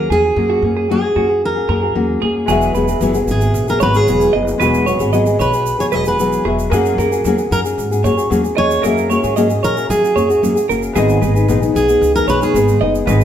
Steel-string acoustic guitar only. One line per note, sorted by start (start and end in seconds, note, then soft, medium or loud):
0.12 0.90 G#4 medium
0.91 1.45 G#4 medium
1.45 2.19 A#4 medium
3.31 3.69 G#4 medium
3.70 3.82 A#4 medium
3.83 3.96 B4 loud
3.96 4.35 G#4 medium
5.41 5.80 B4 medium
5.80 5.85 C#5 medium
5.94 6.07 D#5 medium
6.08 6.44 B4 medium
7.52 7.59 A#4 loud
8.58 8.82 C#5 loud
9.64 9.90 A#4 loud
9.90 10.65 G#4 medium
11.76 12.15 G#4 medium
12.16 12.29 A#4 loud
12.29 12.41 B4 loud
12.43 12.79 G#4 medium